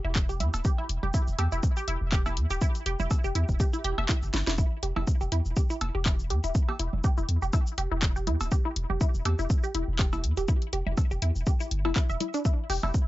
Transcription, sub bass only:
0.05 0.42 E1 medium
0.40 0.49 E2 medium
0.54 0.61 D1 medium
0.89 0.98 E1 loud
1.03 1.10 E1 loud
1.28 1.35 E1 loud
1.39 1.48 E2 loud
1.52 1.59 E1 medium
1.88 1.97 E1 medium
2.01 2.38 E1 loud
2.37 2.46 E2 medium
2.50 2.58 D1 medium
2.86 2.95 E1 loud
3.00 3.07 E1 medium
3.24 3.32 E1 loud
3.35 3.44 E2 loud
3.49 3.56 E1 medium
3.84 3.93 E1 medium
3.98 4.05 E1 loud
4.23 4.30 F#1 medium
4.34 4.43 G1 loud
4.47 4.63 E1 medium
4.83 4.92 E1 medium
4.96 5.04 E1 medium
5.21 5.28 E1 loud
5.32 5.41 E2 loud
5.46 5.53 E1 medium
5.81 5.90 E1 medium
5.95 6.32 E1 medium
6.30 6.39 E2 medium
6.44 6.51 D1 medium
6.80 6.88 E1 loud
6.93 7.00 E1 medium
7.18 7.25 E1 loud
7.29 7.38 E2 loud
7.42 7.50 E1 medium
7.78 7.87 E1 medium
7.92 8.29 E1 loud
8.27 8.36 E2 medium
8.41 8.48 D1 medium
8.76 8.85 E1 medium
8.90 8.97 E1 loud
9.14 9.22 E1 loud
9.25 9.34 E2 loud
9.39 9.46 E1 medium
9.75 9.84 E1 medium
9.88 10.25 E1 loud
10.24 10.33 E2 medium
10.37 10.45 D1 medium
10.73 10.82 E1 loud
10.86 10.94 E1 medium
11.11 11.18 E1 loud
11.22 11.31 E2 loud
11.36 11.43 E1 medium
11.71 11.86 G1 medium
11.85 11.92 E1 loud
12.09 12.17 E1 medium
12.70 12.79 E1 loud
12.83 12.91 E1 loud

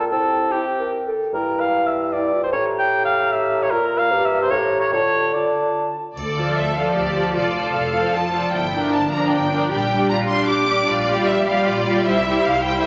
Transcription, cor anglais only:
0.11 0.54 A4 medium
0.52 0.93 G4 soft
1.34 1.62 A#4 soft
1.60 1.88 F5 medium
1.87 2.15 E5 soft
2.13 2.43 D5 medium
2.43 2.48 C5 soft
2.52 2.64 C#5 medium
2.79 3.04 G5 medium
3.05 3.34 F5 medium
3.32 3.64 E5 medium
3.63 3.73 C#5 medium
3.71 4.00 A#4 medium
3.98 4.27 F5 medium
4.25 4.42 E5 medium
4.42 4.52 C5 medium
4.51 4.79 C#5 medium
4.80 4.92 C#5 medium
4.93 5.35 C#5 medium
5.34 5.96 D5 soft

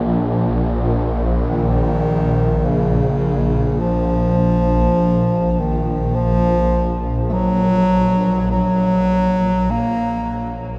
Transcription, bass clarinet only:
1.47 2.67 D#3 medium
2.65 3.81 C#3 medium
3.80 5.52 F3 medium
5.52 5.60 F3 medium
5.59 6.16 D#3 medium
6.15 7.08 F3 loud
7.29 8.51 F#3 loud
7.29 7.34 A3 medium
8.51 9.72 F#3 loud
9.71 10.60 A#3 loud

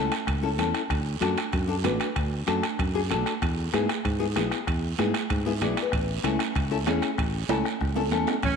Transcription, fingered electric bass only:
0.27 0.59 C#2 medium
0.59 0.71 E2 medium
0.90 1.15 D2 medium
1.21 1.34 F#2 loud
1.53 1.86 F#2 medium
1.85 1.97 A1 medium
2.16 2.41 D2 medium
2.48 2.60 F#2 medium
2.79 3.12 F#2 medium
3.11 3.23 B1 medium
3.42 3.67 E2 medium
3.74 3.86 G#2 medium
4.05 4.39 G#2 medium
4.37 4.49 B1 medium
4.67 4.92 E2 medium
4.99 5.12 G#2 medium
5.30 5.63 G#2 medium
5.62 5.74 B1 medium
5.93 6.18 A1 medium
6.24 6.36 C#2 medium
6.56 6.87 C#2 medium
6.87 6.99 E2 medium
7.18 7.43 A1 medium
7.49 7.62 C#2 medium
7.81 8.11 C#2 medium
8.11 8.24 E2 medium
8.43 8.56 A1 medium

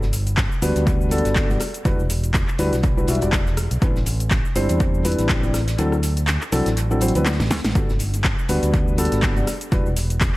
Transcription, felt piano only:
0.62 1.09 G3 medium
0.62 1.09 B3 medium
0.62 1.09 D4 medium
0.62 1.09 F#4 medium
0.62 1.09 B4 loud
1.11 1.46 G3 loud
1.11 1.46 B3 medium
1.11 1.46 D4 medium
1.11 1.46 F#4 medium
1.11 1.47 A4 loud
1.50 1.59 G3 medium
1.50 1.59 B3 medium
1.50 1.59 D4 medium
1.50 1.59 F#4 medium
1.50 1.59 D5 medium
1.85 1.99 G3 medium
1.85 1.99 D4 medium
1.85 2.00 E4 medium
1.85 2.00 F#4 medium
1.85 2.00 B4 loud
2.59 2.73 G3 loud
2.59 2.73 D4 medium
2.59 2.73 E4 medium
2.59 2.73 F#4 medium
2.59 2.73 B4 loud
2.97 3.06 G3 medium
2.97 3.06 D4 medium
2.97 3.06 E4 medium
2.97 3.06 F#4 medium
2.97 3.06 B4 medium
3.08 3.19 G3 medium
3.08 3.19 D4 medium
3.08 3.19 E4 medium
3.08 3.19 F#4 medium
3.08 3.19 E5 loud
3.22 3.33 G3 medium
3.22 3.33 D4 medium
3.22 3.33 E4 medium
3.22 3.33 F#4 medium
3.22 3.34 D5 medium
3.82 3.96 G3 medium
3.82 3.96 C4 medium
3.82 3.96 D4 medium
3.82 3.96 E4 medium
3.82 3.96 B4 medium
4.55 5.02 G3 loud
4.55 5.02 C4 medium
4.55 5.02 D4 medium
4.55 5.02 E4 medium
4.55 5.02 C5 loud
5.05 5.40 G3 medium
5.05 5.40 C4 medium
5.05 5.40 D4 medium
5.05 5.40 E4 medium
5.05 5.40 B4 loud
5.43 5.55 G3 medium
5.43 5.55 C4 medium
5.43 5.55 D4 medium
5.43 5.55 E4 medium
5.43 5.55 D5 medium
5.78 5.93 F#3 loud
5.78 5.93 C4 medium
5.78 5.93 D4 medium
5.78 5.93 E4 medium
5.78 5.93 A4 loud
6.52 6.67 F#3 loud
6.52 6.67 C4 medium
6.52 6.67 D4 medium
6.52 6.67 E4 medium
6.52 6.67 A4 loud
6.91 6.99 F#3 medium
6.91 6.99 C4 medium
6.91 6.99 D4 medium
6.91 6.99 E4 medium
6.91 6.99 A4 medium
7.01 7.12 F#3 medium
7.01 7.12 C4 medium
7.01 7.12 D4 medium
7.01 7.12 E4 medium
7.01 7.12 C5 loud
7.15 7.27 F#3 medium
7.15 7.27 C4 medium
7.15 7.27 D4 medium
7.15 7.27 E4 medium
7.15 7.27 B4 loud
7.75 7.90 G3 medium
7.75 7.90 B3 medium
7.75 7.90 D4 medium
7.75 7.90 F#4 medium
7.75 7.90 A4 medium
8.49 8.96 G3 medium
8.49 8.96 B3 medium
8.49 8.96 D4 medium
8.49 8.96 F#4 medium
8.49 8.96 B4 loud
8.98 9.33 G3 medium
8.98 9.33 B3 medium
8.98 9.33 D4 medium
8.98 9.33 F#4 medium
8.98 9.33 A4 loud
9.36 9.46 G3 medium
9.36 9.46 B3 medium
9.36 9.46 D4 medium
9.36 9.46 F#4 medium
9.36 9.46 D5 medium
9.72 9.86 G3 medium
9.72 9.86 D4 medium
9.72 9.86 E4 medium
9.72 9.86 F#4 medium
9.72 9.86 B4 loud

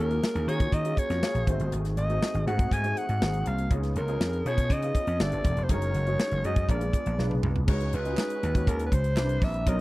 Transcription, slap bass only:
0.00 0.18 D#2 medium
0.35 0.45 D#2 medium
0.47 0.68 D#3 medium
0.72 0.93 D#3 medium
1.10 1.20 F2 medium
1.34 1.45 A#1 medium
1.47 1.58 G#1 medium
1.60 1.70 G1 medium
1.72 1.93 G#1 loud
1.97 2.17 G#1 loud
2.34 2.44 G#1 medium
2.47 2.67 G#2 medium
2.72 2.92 G#2 medium
3.09 3.19 G#2 medium
3.22 3.42 G#1 loud
3.47 3.67 C2 medium
3.71 3.91 C#2 medium
3.96 4.16 C#2 medium
4.20 4.41 F2 medium
4.45 4.70 B2 medium
4.70 4.91 C#3 loud
5.07 5.18 F2 medium
5.20 5.30 G1 loud
5.32 5.42 G1 medium
5.45 5.55 E1 medium
5.57 5.67 F1 medium
5.70 5.90 F#1 medium
5.95 6.15 F#1 loud
6.32 6.42 F#1 medium
6.44 6.65 F#2 medium
6.69 6.89 A#1 medium
7.06 7.16 A#1 medium
7.19 7.39 B1 medium
7.44 7.64 C2 medium
7.68 7.89 C#2 medium
7.93 8.14 C#2 medium
8.43 8.63 D#2 medium
8.67 8.88 D#2 medium
8.92 9.17 C#2 medium
9.17 9.38 C2 medium
9.42 9.67 A#1 medium
9.67 9.81 B1 loud

